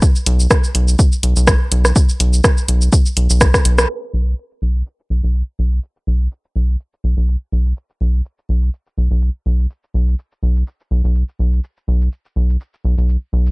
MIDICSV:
0, 0, Header, 1, 3, 480
1, 0, Start_track
1, 0, Tempo, 483871
1, 23, Time_signature, 4, 2, 24, 8
1, 13405, End_track
2, 0, Start_track
2, 0, Title_t, "Analog synth bass"
2, 0, Program_c, 0, 38
2, 262, Note_on_c, 0, 35, 102
2, 466, Note_off_c, 0, 35, 0
2, 742, Note_on_c, 0, 35, 86
2, 946, Note_off_c, 0, 35, 0
2, 1222, Note_on_c, 0, 35, 85
2, 1332, Note_off_c, 0, 35, 0
2, 1353, Note_on_c, 0, 35, 90
2, 1543, Note_off_c, 0, 35, 0
2, 1703, Note_on_c, 0, 35, 97
2, 1907, Note_off_c, 0, 35, 0
2, 2182, Note_on_c, 0, 35, 97
2, 2386, Note_off_c, 0, 35, 0
2, 2663, Note_on_c, 0, 35, 91
2, 2866, Note_off_c, 0, 35, 0
2, 3143, Note_on_c, 0, 35, 88
2, 3252, Note_off_c, 0, 35, 0
2, 3274, Note_on_c, 0, 35, 91
2, 3463, Note_off_c, 0, 35, 0
2, 3623, Note_on_c, 0, 35, 90
2, 3827, Note_off_c, 0, 35, 0
2, 4102, Note_on_c, 0, 35, 92
2, 4306, Note_off_c, 0, 35, 0
2, 4583, Note_on_c, 0, 35, 80
2, 4786, Note_off_c, 0, 35, 0
2, 5062, Note_on_c, 0, 35, 82
2, 5171, Note_off_c, 0, 35, 0
2, 5194, Note_on_c, 0, 35, 79
2, 5383, Note_off_c, 0, 35, 0
2, 5544, Note_on_c, 0, 35, 88
2, 5747, Note_off_c, 0, 35, 0
2, 6024, Note_on_c, 0, 35, 91
2, 6227, Note_off_c, 0, 35, 0
2, 6503, Note_on_c, 0, 35, 86
2, 6707, Note_off_c, 0, 35, 0
2, 6983, Note_on_c, 0, 35, 84
2, 7092, Note_off_c, 0, 35, 0
2, 7114, Note_on_c, 0, 35, 84
2, 7303, Note_off_c, 0, 35, 0
2, 7464, Note_on_c, 0, 35, 86
2, 7667, Note_off_c, 0, 35, 0
2, 7944, Note_on_c, 0, 35, 93
2, 8147, Note_off_c, 0, 35, 0
2, 8424, Note_on_c, 0, 35, 84
2, 8627, Note_off_c, 0, 35, 0
2, 8905, Note_on_c, 0, 35, 81
2, 9013, Note_off_c, 0, 35, 0
2, 9036, Note_on_c, 0, 35, 84
2, 9224, Note_off_c, 0, 35, 0
2, 9384, Note_on_c, 0, 35, 85
2, 9587, Note_off_c, 0, 35, 0
2, 9864, Note_on_c, 0, 35, 89
2, 10067, Note_off_c, 0, 35, 0
2, 10343, Note_on_c, 0, 35, 86
2, 10547, Note_off_c, 0, 35, 0
2, 10824, Note_on_c, 0, 35, 86
2, 10932, Note_off_c, 0, 35, 0
2, 10954, Note_on_c, 0, 35, 86
2, 11143, Note_off_c, 0, 35, 0
2, 11304, Note_on_c, 0, 35, 82
2, 11507, Note_off_c, 0, 35, 0
2, 11785, Note_on_c, 0, 35, 92
2, 11987, Note_off_c, 0, 35, 0
2, 12263, Note_on_c, 0, 35, 84
2, 12467, Note_off_c, 0, 35, 0
2, 12743, Note_on_c, 0, 35, 85
2, 12852, Note_off_c, 0, 35, 0
2, 12874, Note_on_c, 0, 35, 85
2, 13063, Note_off_c, 0, 35, 0
2, 13223, Note_on_c, 0, 35, 93
2, 13405, Note_off_c, 0, 35, 0
2, 13405, End_track
3, 0, Start_track
3, 0, Title_t, "Drums"
3, 22, Note_on_c, 9, 36, 116
3, 22, Note_on_c, 9, 82, 54
3, 121, Note_off_c, 9, 36, 0
3, 121, Note_off_c, 9, 82, 0
3, 154, Note_on_c, 9, 82, 29
3, 253, Note_off_c, 9, 82, 0
3, 262, Note_on_c, 9, 42, 94
3, 361, Note_off_c, 9, 42, 0
3, 394, Note_on_c, 9, 82, 46
3, 493, Note_off_c, 9, 82, 0
3, 502, Note_on_c, 9, 36, 118
3, 502, Note_on_c, 9, 37, 88
3, 502, Note_on_c, 9, 82, 53
3, 601, Note_off_c, 9, 36, 0
3, 601, Note_off_c, 9, 37, 0
3, 601, Note_off_c, 9, 82, 0
3, 633, Note_on_c, 9, 82, 31
3, 733, Note_off_c, 9, 82, 0
3, 742, Note_on_c, 9, 42, 88
3, 841, Note_off_c, 9, 42, 0
3, 873, Note_on_c, 9, 82, 44
3, 972, Note_off_c, 9, 82, 0
3, 982, Note_on_c, 9, 36, 111
3, 982, Note_on_c, 9, 82, 52
3, 1081, Note_off_c, 9, 36, 0
3, 1082, Note_off_c, 9, 82, 0
3, 1113, Note_on_c, 9, 82, 30
3, 1212, Note_off_c, 9, 82, 0
3, 1222, Note_on_c, 9, 42, 84
3, 1321, Note_off_c, 9, 42, 0
3, 1353, Note_on_c, 9, 82, 45
3, 1453, Note_off_c, 9, 82, 0
3, 1462, Note_on_c, 9, 36, 119
3, 1462, Note_on_c, 9, 37, 95
3, 1462, Note_on_c, 9, 82, 55
3, 1561, Note_off_c, 9, 36, 0
3, 1562, Note_off_c, 9, 37, 0
3, 1562, Note_off_c, 9, 82, 0
3, 1702, Note_on_c, 9, 42, 97
3, 1801, Note_off_c, 9, 42, 0
3, 1834, Note_on_c, 9, 37, 63
3, 1834, Note_on_c, 9, 82, 44
3, 1933, Note_off_c, 9, 37, 0
3, 1933, Note_off_c, 9, 82, 0
3, 1942, Note_on_c, 9, 36, 121
3, 1943, Note_on_c, 9, 82, 57
3, 2041, Note_off_c, 9, 36, 0
3, 2042, Note_off_c, 9, 82, 0
3, 2074, Note_on_c, 9, 82, 31
3, 2173, Note_off_c, 9, 82, 0
3, 2183, Note_on_c, 9, 42, 91
3, 2282, Note_off_c, 9, 42, 0
3, 2314, Note_on_c, 9, 82, 46
3, 2413, Note_off_c, 9, 82, 0
3, 2422, Note_on_c, 9, 36, 118
3, 2423, Note_on_c, 9, 37, 87
3, 2423, Note_on_c, 9, 82, 52
3, 2522, Note_off_c, 9, 36, 0
3, 2522, Note_off_c, 9, 37, 0
3, 2522, Note_off_c, 9, 82, 0
3, 2554, Note_on_c, 9, 82, 30
3, 2653, Note_off_c, 9, 82, 0
3, 2663, Note_on_c, 9, 42, 87
3, 2762, Note_off_c, 9, 42, 0
3, 2793, Note_on_c, 9, 82, 46
3, 2892, Note_off_c, 9, 82, 0
3, 2902, Note_on_c, 9, 36, 111
3, 2902, Note_on_c, 9, 82, 55
3, 3001, Note_off_c, 9, 36, 0
3, 3001, Note_off_c, 9, 82, 0
3, 3033, Note_on_c, 9, 82, 32
3, 3133, Note_off_c, 9, 82, 0
3, 3142, Note_on_c, 9, 42, 89
3, 3241, Note_off_c, 9, 42, 0
3, 3274, Note_on_c, 9, 82, 48
3, 3373, Note_off_c, 9, 82, 0
3, 3382, Note_on_c, 9, 36, 118
3, 3382, Note_on_c, 9, 37, 67
3, 3382, Note_on_c, 9, 82, 60
3, 3481, Note_off_c, 9, 36, 0
3, 3481, Note_off_c, 9, 37, 0
3, 3481, Note_off_c, 9, 82, 0
3, 3513, Note_on_c, 9, 36, 61
3, 3513, Note_on_c, 9, 37, 64
3, 3513, Note_on_c, 9, 82, 31
3, 3612, Note_off_c, 9, 36, 0
3, 3612, Note_off_c, 9, 37, 0
3, 3612, Note_off_c, 9, 82, 0
3, 3622, Note_on_c, 9, 42, 92
3, 3722, Note_off_c, 9, 42, 0
3, 3754, Note_on_c, 9, 37, 88
3, 3754, Note_on_c, 9, 82, 45
3, 3853, Note_off_c, 9, 37, 0
3, 3853, Note_off_c, 9, 82, 0
3, 3863, Note_on_c, 9, 82, 51
3, 3962, Note_off_c, 9, 82, 0
3, 4234, Note_on_c, 9, 82, 38
3, 4333, Note_off_c, 9, 82, 0
3, 4343, Note_on_c, 9, 82, 46
3, 4442, Note_off_c, 9, 82, 0
3, 4474, Note_on_c, 9, 82, 29
3, 4573, Note_off_c, 9, 82, 0
3, 4713, Note_on_c, 9, 82, 38
3, 4813, Note_off_c, 9, 82, 0
3, 4822, Note_on_c, 9, 82, 49
3, 4922, Note_off_c, 9, 82, 0
3, 4953, Note_on_c, 9, 82, 27
3, 5052, Note_off_c, 9, 82, 0
3, 5194, Note_on_c, 9, 82, 42
3, 5293, Note_off_c, 9, 82, 0
3, 5303, Note_on_c, 9, 82, 50
3, 5402, Note_off_c, 9, 82, 0
3, 5674, Note_on_c, 9, 82, 42
3, 5773, Note_off_c, 9, 82, 0
3, 5782, Note_on_c, 9, 82, 50
3, 5882, Note_off_c, 9, 82, 0
3, 5913, Note_on_c, 9, 82, 25
3, 6013, Note_off_c, 9, 82, 0
3, 6154, Note_on_c, 9, 82, 38
3, 6253, Note_off_c, 9, 82, 0
3, 6263, Note_on_c, 9, 82, 44
3, 6362, Note_off_c, 9, 82, 0
3, 6394, Note_on_c, 9, 82, 28
3, 6493, Note_off_c, 9, 82, 0
3, 6634, Note_on_c, 9, 82, 38
3, 6734, Note_off_c, 9, 82, 0
3, 6744, Note_on_c, 9, 82, 45
3, 6843, Note_off_c, 9, 82, 0
3, 6875, Note_on_c, 9, 82, 26
3, 6974, Note_off_c, 9, 82, 0
3, 7114, Note_on_c, 9, 82, 39
3, 7214, Note_off_c, 9, 82, 0
3, 7223, Note_on_c, 9, 82, 47
3, 7322, Note_off_c, 9, 82, 0
3, 7594, Note_on_c, 9, 82, 41
3, 7693, Note_off_c, 9, 82, 0
3, 7704, Note_on_c, 9, 82, 45
3, 7803, Note_off_c, 9, 82, 0
3, 7834, Note_on_c, 9, 82, 25
3, 7934, Note_off_c, 9, 82, 0
3, 8074, Note_on_c, 9, 82, 37
3, 8173, Note_off_c, 9, 82, 0
3, 8183, Note_on_c, 9, 82, 44
3, 8283, Note_off_c, 9, 82, 0
3, 8315, Note_on_c, 9, 82, 26
3, 8414, Note_off_c, 9, 82, 0
3, 8554, Note_on_c, 9, 82, 37
3, 8653, Note_off_c, 9, 82, 0
3, 8663, Note_on_c, 9, 82, 47
3, 8762, Note_off_c, 9, 82, 0
3, 8794, Note_on_c, 9, 82, 24
3, 8893, Note_off_c, 9, 82, 0
3, 9034, Note_on_c, 9, 82, 39
3, 9133, Note_off_c, 9, 82, 0
3, 9143, Note_on_c, 9, 82, 47
3, 9242, Note_off_c, 9, 82, 0
3, 9514, Note_on_c, 9, 82, 37
3, 9613, Note_off_c, 9, 82, 0
3, 9623, Note_on_c, 9, 82, 47
3, 9722, Note_off_c, 9, 82, 0
3, 9755, Note_on_c, 9, 82, 24
3, 9854, Note_off_c, 9, 82, 0
3, 9994, Note_on_c, 9, 82, 35
3, 10093, Note_off_c, 9, 82, 0
3, 10103, Note_on_c, 9, 82, 42
3, 10202, Note_off_c, 9, 82, 0
3, 10234, Note_on_c, 9, 82, 26
3, 10333, Note_off_c, 9, 82, 0
3, 10475, Note_on_c, 9, 82, 36
3, 10574, Note_off_c, 9, 82, 0
3, 10583, Note_on_c, 9, 82, 46
3, 10683, Note_off_c, 9, 82, 0
3, 10715, Note_on_c, 9, 82, 24
3, 10814, Note_off_c, 9, 82, 0
3, 10954, Note_on_c, 9, 82, 36
3, 11054, Note_off_c, 9, 82, 0
3, 11063, Note_on_c, 9, 82, 48
3, 11162, Note_off_c, 9, 82, 0
3, 11194, Note_on_c, 9, 82, 24
3, 11293, Note_off_c, 9, 82, 0
3, 11434, Note_on_c, 9, 82, 36
3, 11533, Note_off_c, 9, 82, 0
3, 11544, Note_on_c, 9, 82, 44
3, 11643, Note_off_c, 9, 82, 0
3, 11675, Note_on_c, 9, 82, 24
3, 11774, Note_off_c, 9, 82, 0
3, 11915, Note_on_c, 9, 82, 36
3, 12014, Note_off_c, 9, 82, 0
3, 12024, Note_on_c, 9, 82, 43
3, 12123, Note_off_c, 9, 82, 0
3, 12155, Note_on_c, 9, 82, 27
3, 12254, Note_off_c, 9, 82, 0
3, 12394, Note_on_c, 9, 82, 38
3, 12493, Note_off_c, 9, 82, 0
3, 12503, Note_on_c, 9, 82, 47
3, 12602, Note_off_c, 9, 82, 0
3, 12634, Note_on_c, 9, 82, 24
3, 12733, Note_off_c, 9, 82, 0
3, 12874, Note_on_c, 9, 82, 37
3, 12973, Note_off_c, 9, 82, 0
3, 12983, Note_on_c, 9, 82, 46
3, 13082, Note_off_c, 9, 82, 0
3, 13354, Note_on_c, 9, 82, 38
3, 13405, Note_off_c, 9, 82, 0
3, 13405, End_track
0, 0, End_of_file